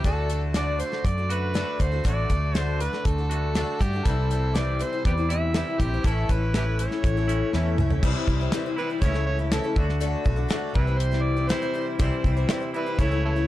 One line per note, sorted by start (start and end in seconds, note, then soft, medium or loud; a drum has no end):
0.04 0.81 D2 loud
0.04 0.30 D3 medium
0.04 0.28 A3 medium
0.04 0.29 D4 medium
0.04 0.30 F#4 medium
0.04 0.42 A4 medium
0.04 0.31 A4 medium
0.04 kick loud
0.04 closed hi-hat medium
0.29 0.54 A3 soft
0.29 0.54 D4 medium
0.29 0.54 F#4 medium
0.29 0.55 A4 medium
0.29 closed hi-hat medium
0.54 0.80 D3 medium
0.54 0.78 A3 medium
0.54 0.79 D4 medium
0.54 0.79 F#4 medium
0.54 0.80 A4 medium
0.54 0.82 D5 medium
0.54 snare loud
0.54 closed hi-hat medium
0.79 0.92 A3 medium
0.79 0.93 D4 medium
0.79 0.92 F#4 medium
0.79 0.91 A4 medium
0.79 1.07 C5 medium
0.79 closed hi-hat medium
0.92 1.19 D4 soft
0.92 1.18 F#4 soft
0.92 1.17 A4 soft
0.92 snare soft
1.05 1.62 F#2 medium
1.05 1.33 D5 loud
1.05 kick loud
1.05 closed hi-hat medium
1.18 1.54 D4 soft
1.18 1.54 F#4 soft
1.18 1.54 A4 soft
1.29 1.53 D3 medium
1.29 1.55 A3 medium
1.29 1.54 D4 medium
1.29 1.54 F#4 medium
1.29 1.82 B4 loud
1.29 closed hi-hat medium
1.54 1.80 D3 medium
1.54 1.78 A3 medium
1.54 1.79 D4 medium
1.54 1.80 F#4 medium
1.54 1.80 A4 medium
1.54 snare loud
1.54 closed hi-hat medium
1.79 1.99 D2 medium
1.79 1.92 A3 medium
1.79 1.93 D4 medium
1.79 1.92 F#4 medium
1.79 1.91 A4 medium
1.79 2.05 C5 medium
1.79 kick medium
1.79 closed hi-hat medium
1.92 2.03 D4 soft
1.92 2.04 F#4 soft
1.92 2.04 A4 soft
2.04 2.24 A1 medium
2.04 2.30 D3 medium
2.04 2.29 A3 medium
2.04 2.29 D4 medium
2.04 2.30 F#4 medium
2.04 2.31 A4 medium
2.04 2.58 D5 medium
2.04 kick medium
2.04 closed hi-hat medium
2.30 2.87 D2 loud
2.30 2.54 A3 medium
2.30 2.54 D4 medium
2.30 2.54 F#4 medium
2.30 2.55 A4 medium
2.30 kick medium
2.30 closed hi-hat medium
2.54 2.80 D3 medium
2.54 2.79 A3 medium
2.54 2.80 D4 medium
2.54 2.81 F#4 medium
2.54 2.81 A4 medium
2.54 2.83 C5 medium
2.54 snare loud
2.54 closed hi-hat medium
2.81 2.93 A3 soft
2.81 2.94 D4 medium
2.81 2.93 F#4 medium
2.81 2.92 A4 medium
2.81 3.07 B4 medium
2.81 closed hi-hat medium
2.93 3.19 D4 soft
2.93 3.18 F#4 soft
2.93 3.17 A4 soft
2.93 snare soft
3.05 3.63 D2 medium
3.05 3.82 A4 loud
3.05 kick loud
3.05 closed hi-hat medium
3.18 3.55 D4 soft
3.18 3.55 F#4 soft
3.18 3.55 A4 medium
3.30 3.53 D3 medium
3.30 3.55 A3 medium
3.30 3.54 D4 medium
3.30 3.54 F#4 medium
3.30 closed hi-hat medium
3.55 3.80 D3 medium
3.55 3.78 A3 medium
3.55 3.80 D4 medium
3.55 3.80 F#4 medium
3.55 3.81 A4 medium
3.55 snare loud
3.55 closed hi-hat medium
3.79 4.00 G2 medium
3.79 3.92 A3 medium
3.79 3.93 D4 medium
3.79 3.93 F#4 medium
3.79 4.07 G4 medium
3.79 3.92 A4 medium
3.79 kick medium
3.79 closed hi-hat medium
3.93 4.07 D4 soft
3.93 4.06 F#4 soft
3.93 4.06 A4 medium
4.05 4.82 C2 medium
4.05 4.30 C3 medium
4.05 4.31 E3 medium
4.05 4.29 G3 medium
4.05 4.30 C4 medium
4.05 4.31 E4 medium
4.05 4.58 A4 medium
4.05 4.31 C5 medium
4.05 kick loud
4.05 closed hi-hat medium
4.30 4.54 G3 medium
4.30 4.54 C4 medium
4.30 4.55 E4 medium
4.30 4.54 C5 medium
4.30 closed hi-hat medium
4.54 4.80 C3 medium
4.54 4.80 E3 medium
4.54 4.78 G3 medium
4.54 4.79 C4 medium
4.54 4.80 E4 medium
4.54 4.80 C5 medium
4.54 4.83 D5 medium
4.54 snare loud
4.54 closed hi-hat medium
4.79 4.92 G3 medium
4.79 4.93 C4 medium
4.79 4.92 E4 medium
4.79 4.91 C5 medium
4.79 5.05 C5 medium
4.79 closed hi-hat medium
4.93 5.18 G3 soft
4.93 5.18 C4 soft
4.93 5.18 E4 soft
4.93 5.16 C5 soft
5.05 5.62 E2 medium
5.05 5.12 G4 medium
5.05 5.12 B4 medium
5.05 5.29 D5 medium
5.05 kick loud
5.05 closed hi-hat medium
5.17 5.55 G3 soft
5.17 5.55 C4 soft
5.17 5.56 E4 soft
5.17 5.55 C5 soft
5.29 5.53 C3 medium
5.29 5.54 E3 medium
5.29 5.54 G3 medium
5.29 5.53 C4 medium
5.29 5.56 E4 medium
5.29 5.81 E5 loud
5.29 closed hi-hat medium
5.54 5.80 C3 medium
5.54 5.80 E3 medium
5.54 5.79 G3 medium
5.54 5.80 C4 medium
5.54 5.80 E4 medium
5.54 5.81 C5 medium
5.54 snare loud
5.54 closed hi-hat medium
5.80 5.99 A#1 medium
5.80 5.93 G3 medium
5.80 5.93 C4 medium
5.80 5.93 E4 medium
5.80 6.08 G4 medium
5.80 5.92 C5 medium
5.80 kick medium
5.80 closed hi-hat medium
5.94 6.06 G3 soft
5.94 6.06 C4 soft
5.94 6.06 E4 soft
5.94 6.05 C5 medium
6.04 6.23 A1 medium
6.04 6.31 A2 medium
6.04 6.31 E3 medium
6.04 6.29 A3 medium
6.04 6.30 C#4 medium
6.04 6.30 E4 medium
6.04 6.33 A4 medium
6.04 kick medium
6.04 closed hi-hat medium
6.08 6.31 A4 medium
6.29 6.86 A1 loud
6.29 6.54 A3 medium
6.29 6.55 C#4 medium
6.29 6.55 E4 medium
6.29 6.55 A4 medium
6.29 6.55 B4 medium
6.29 kick medium
6.29 closed hi-hat medium
6.54 6.80 A2 medium
6.54 6.80 E3 medium
6.54 6.79 A3 medium
6.54 6.80 C#4 medium
6.54 6.65 E4 medium
6.54 6.80 E4 medium
6.54 6.64 G4 medium
6.54 6.80 A4 medium
6.54 6.78 B4 medium
6.54 snare loud
6.54 closed hi-hat medium
6.79 6.92 A3 medium
6.79 6.92 C#4 medium
6.79 6.91 E4 medium
6.79 6.91 A4 medium
6.79 7.75 C#5 medium
6.79 closed hi-hat medium
6.91 7.18 A3 soft
6.91 7.17 C#4 soft
6.91 7.17 E4 soft
6.91 7.16 A4 soft
6.91 snare soft
7.04 7.42 A1 medium
7.04 kick loud
7.04 closed hi-hat medium
7.17 7.54 A3 soft
7.17 7.55 C#4 soft
7.17 7.54 E4 medium
7.17 7.54 A4 medium
7.28 7.51 A2 medium
7.28 7.52 E3 medium
7.28 7.53 A3 medium
7.28 7.52 C#4 medium
7.28 7.52 E4 medium
7.28 closed hi-hat medium
7.53 7.76 E2 medium
7.53 7.79 A2 medium
7.53 7.79 E3 medium
7.53 7.77 A3 medium
7.53 7.78 C#4 medium
7.53 7.79 E4 loud
7.53 7.79 A4 medium
7.53 snare medium
7.78 8.00 C#2 medium
7.78 7.91 A3 medium
7.78 7.90 C#4 medium
7.78 7.90 E4 medium
7.78 7.89 A4 medium
7.78 mid tom medium
7.90 8.03 A3 soft
7.90 8.04 C#4 soft
7.90 8.04 E4 medium
7.90 8.03 A4 medium
7.90 floor tom medium
8.03 8.13 C2 medium
8.03 8.28 C3 medium
8.03 8.28 E3 medium
8.03 8.26 G3 medium
8.03 8.27 C4 loud
8.03 8.28 E4 medium
8.03 8.29 C5 loud
8.03 kick loud
8.03 crash loud
8.27 8.47 C2 medium
8.27 8.40 G3 medium
8.27 8.41 C4 medium
8.27 8.40 E4 medium
8.27 8.39 C5 medium
8.27 kick medium
8.41 8.53 G3 soft
8.41 8.53 C4 medium
8.41 8.53 E4 medium
8.41 8.53 C5 medium
8.52 8.66 C3 medium
8.52 8.66 E3 medium
8.52 8.66 G3 medium
8.52 8.66 C4 medium
8.52 8.65 E4 medium
8.52 8.65 C5 medium
8.52 snare loud
8.52 closed hi-hat medium
8.66 8.77 G3 soft
8.66 8.78 C4 soft
8.66 8.78 E4 medium
8.66 8.78 C5 medium
8.78 9.01 C3 medium
8.78 9.01 E3 medium
8.78 8.90 G3 medium
8.78 8.90 C4 medium
8.78 8.90 E4 medium
8.78 8.89 B4 medium
8.78 8.89 C5 medium
8.90 9.02 G3 soft
8.90 9.03 C4 soft
8.90 9.02 E4 soft
8.90 9.02 C5 soft
9.01 9.59 C#2 medium
9.01 9.15 C#3 medium
9.01 9.15 E3 medium
9.01 9.15 A3 medium
9.01 9.14 C#4 medium
9.01 9.13 E4 medium
9.01 9.13 A4 medium
9.01 9.25 C#5 loud
9.01 kick loud
9.01 closed hi-hat medium
9.14 9.39 A3 soft
9.14 9.39 C#4 soft
9.14 9.38 E4 soft
9.14 9.38 A4 medium
9.14 snare soft
9.26 9.38 C#5 loud
9.39 9.51 A3 soft
9.39 9.51 C#4 soft
9.39 9.52 E4 medium
9.39 9.52 A4 medium
9.52 9.65 C#3 medium
9.52 9.65 E3 medium
9.52 9.64 A3 medium
9.52 9.63 C#4 medium
9.52 9.63 E4 medium
9.52 9.87 A4 medium
9.52 9.62 A4 medium
9.52 snare loud
9.52 closed hi-hat medium
9.63 9.75 A3 soft
9.63 9.76 C#4 medium
9.63 9.76 E4 medium
9.63 9.76 A4 medium
9.76 10.14 D2 medium
9.76 10.49 D3 medium
9.76 10.00 A3 medium
9.76 9.99 D4 medium
9.76 10.00 F#4 medium
9.76 10.01 A4 medium
9.76 kick loud
9.89 snare soft
10.00 10.26 D3 medium
10.00 10.23 A3 medium
10.00 10.24 D4 loud
10.00 10.25 F#4 medium
10.00 10.26 A4 loud
10.00 closed hi-hat medium
10.24 10.45 B1 medium
10.24 10.38 A3 medium
10.24 10.37 D4 medium
10.24 10.36 F#4 medium
10.24 10.35 A4 medium
10.24 kick medium
10.36 10.49 D4 soft
10.36 10.49 F#4 medium
10.36 10.49 A4 medium
10.49 10.75 D3 medium
10.49 10.74 A3 medium
10.49 10.75 D4 medium
10.49 10.75 F#4 medium
10.49 10.76 A4 loud
10.49 snare loud
10.49 closed hi-hat medium
10.74 11.51 C2 medium
10.74 11.48 C3 medium
10.74 11.48 E3 medium
10.74 10.88 G3 medium
10.74 10.87 C4 medium
10.74 10.87 E4 medium
10.74 11.00 B4 medium
10.74 10.86 C5 medium
10.74 kick loud
10.87 11.12 G3 soft
10.87 11.12 C4 soft
10.87 11.11 E4 soft
10.87 11.10 C5 soft
10.99 11.24 C5 loud
10.99 closed hi-hat medium
11.11 11.37 G3 soft
11.11 11.37 C4 medium
11.11 11.36 E4 medium
11.11 11.35 C5 medium
11.11 snare soft
11.22 11.49 D5 loud
11.37 11.48 G3 soft
11.37 11.49 C4 soft
11.37 11.49 E4 medium
11.37 11.49 C5 medium
11.48 11.62 C3 medium
11.48 11.63 E3 medium
11.48 11.63 G3 medium
11.48 11.62 C4 medium
11.48 11.62 E4 medium
11.48 11.86 C5 medium
11.48 11.61 C5 medium
11.48 snare loud
11.48 closed hi-hat medium
11.62 11.72 G3 soft
11.62 11.73 C4 medium
11.62 11.74 E4 medium
11.62 11.74 C5 medium
11.74 11.98 G3 medium
11.74 11.99 C4 medium
11.74 11.99 E4 medium
11.74 11.99 C5 medium
11.99 12.09 C2 loud
11.99 12.24 C3 medium
11.99 12.25 E3 medium
11.99 12.23 G3 loud
11.99 12.24 C4 loud
11.99 12.43 E4 medium
11.99 12.25 E4 loud
11.99 12.43 G4 medium
11.99 12.43 C5 loud
11.99 12.25 C5 loud
11.99 kick loud
11.99 closed hi-hat medium
12.24 12.44 C2 loud
12.24 12.37 G3 medium
12.24 12.37 C4 medium
12.24 12.36 E4 medium
12.24 12.36 C5 medium
12.24 kick medium
12.37 12.48 G3 medium
12.37 12.49 C4 medium
12.37 12.49 E4 medium
12.37 12.49 C5 medium
12.49 12.62 C3 medium
12.49 12.62 E3 medium
12.49 12.62 G3 medium
12.49 12.61 C4 medium
12.49 12.93 E4 loud
12.49 12.60 E4 medium
12.49 12.93 G4 medium
12.49 12.93 C5 loud
12.49 12.59 C5 medium
12.49 snare loud
12.49 closed hi-hat medium
12.60 12.73 G3 soft
12.60 12.73 C4 soft
12.60 12.74 E4 soft
12.60 12.74 C5 soft
12.74 12.97 C3 medium
12.74 12.97 E3 medium
12.74 12.87 G3 medium
12.74 12.87 C4 medium
12.74 12.86 E4 medium
12.74 13.02 B4 medium
12.74 12.85 C5 medium
12.86 12.99 G3 soft
12.86 12.99 C4 soft
12.86 12.99 E4 soft
12.86 12.99 C5 medium
12.99 13.47 C#2 medium
12.99 13.11 C#3 medium
12.99 13.11 E3 medium
12.99 13.12 A3 medium
12.99 13.11 C#4 medium
12.99 13.42 E4 medium
12.99 13.10 E4 medium
12.99 13.43 A4 medium
12.99 13.10 A4 medium
12.99 13.43 C#5 medium
12.99 13.24 C#5 loud
12.99 kick loud
12.99 closed hi-hat medium
13.11 13.36 A3 soft
13.11 13.37 C#4 medium
13.11 13.35 E4 medium
13.11 13.35 A4 soft
13.25 13.32 E4 medium
13.25 13.31 A4 medium
13.25 13.47 C#5 medium
13.36 13.47 A3 soft
13.36 13.47 C#4 soft
13.36 13.47 E4 soft
13.36 13.47 A4 medium